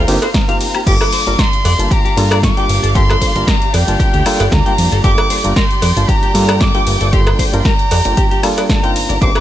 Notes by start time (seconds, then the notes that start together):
Already playing: A#4 C5 F5 A#5 F6
0.08 G1 A#3 C4 D#4 F4 G4, open hi-hat, ride
0.22 C5, closed hi-hat, cowbell
0.34 A#5, kick, snare, closed hi-hat, ride
0.48 A#3 C4 D#4 F4 G4 F5, closed hi-hat
0.61 open hi-hat, ride
0.75 G4, closed hi-hat, high woodblock
0.86 G1 G3 A#3 D4 F4 G4 A4 D5 F5 D6, kick, closed hi-hat, crash, ride
1.01 cowbell, high woodblock
1.13 C5, open hi-hat, ride
1.26 G1 G3 A#3 D4 F4 A#4, closed hi-hat
1.39 A#4 C6, kick, snare, closed hi-hat, ride
1.53 closed hi-hat
1.65 F2 D5, open hi-hat, ride, cowbell
1.79 G1 G3 A#3 D4 F4 A5, closed hi-hat
1.91 G4 A#5, kick, closed hi-hat, ride
2.05 G4, closed hi-hat
2.17 G2 G3 A#3 D4 F4 A4, open hi-hat, ride
2.31 D5, closed hi-hat, cowbell, high woodblock
2.43 D6, kick, snare, closed hi-hat, ride
2.57 G3 A#3 D4 F4 G4 G5, closed hi-hat
2.69 G1, open hi-hat, ride
2.83 G1 A4, closed hi-hat
2.95 G3 A#3 D4 F4 G4 A4 C6, kick, closed hi-hat, ride
3.10 cowbell, high woodblock
3.21 C5, kick, open hi-hat, ride
3.36 G1 G3 A#3 D4 F4 A#4, closed hi-hat
3.47 A#4 A#5, kick, snare, closed hi-hat, ride
3.62 closed hi-hat
3.73 F2 D5 G5, open hi-hat, ride, cowbell
3.88 G1 G3 A#3 D4 F4 A5, closed hi-hat
3.99 G4, kick, closed hi-hat, ride
4.13 D2 G4, closed hi-hat
4.26 G3 A#3 D4 F4 A4, open hi-hat, ride, high woodblock
4.40 G1 D5, closed hi-hat, cowbell
4.52 D2 A#5, kick, snare, closed hi-hat, ride
4.66 G3 A#3 D4 F4 G4 G5, closed hi-hat
4.78 F2, open hi-hat, ride
4.92 G1 A4, closed hi-hat
5.04 G1 G3 A#3 D4 F4 G4 A4 G5 D6, kick, closed hi-hat, ride
5.18 cowbell, high woodblock
5.30 C5, open hi-hat, ride
5.44 G1 G3 A#3 D4 F4 A#4, closed hi-hat
5.56 A#4 C6, kick, snare, closed hi-hat, ride
5.71 closed hi-hat
5.82 F2 D5, open hi-hat, ride, cowbell
5.96 G1 G3 A#3 D4 F4 A5, closed hi-hat
6.08 G4 A#5, kick, closed hi-hat, ride
6.23 G4, closed hi-hat
6.34 G2 G3 A#3 D4 F4 A4, open hi-hat, ride
6.49 D5, closed hi-hat, cowbell, high woodblock
6.60 D6, kick, snare, closed hi-hat, ride
6.75 G3 A#3 D4 F4 G4 G5, closed hi-hat
6.87 G1, open hi-hat, ride
7.01 G1 A4, closed hi-hat
7.13 G3 A#3 D4 F4 G4 A4 C6, kick, closed hi-hat, ride
7.27 cowbell, high woodblock
7.39 C5, kick, open hi-hat, ride
7.53 G1 G3 A#3 D4 F4 A#4, closed hi-hat
7.58 C6
7.65 A#4 A#5, kick, snare, closed hi-hat, ride
7.79 closed hi-hat
7.91 F2 D5, open hi-hat, ride, cowbell
8.05 G1 G3 A#3 D4 F4 G5, closed hi-hat
8.17 G4, kick, closed hi-hat, ride
8.31 G4, closed hi-hat
8.43 G3 A#3 D4 F4 A4, open hi-hat, ride, high woodblock
8.57 D5, closed hi-hat, cowbell
8.69 A#5, kick, snare, closed hi-hat, ride
8.83 A#3 C4 D4 D#4 F4 G5, closed hi-hat
8.96 G1 C5, open hi-hat, ride
9.09 G1 D5, closed hi-hat
9.21 G1 A#3 C4 D4 D#4 G4 C5 D6, kick, closed hi-hat, ride
9.35 cowbell, high woodblock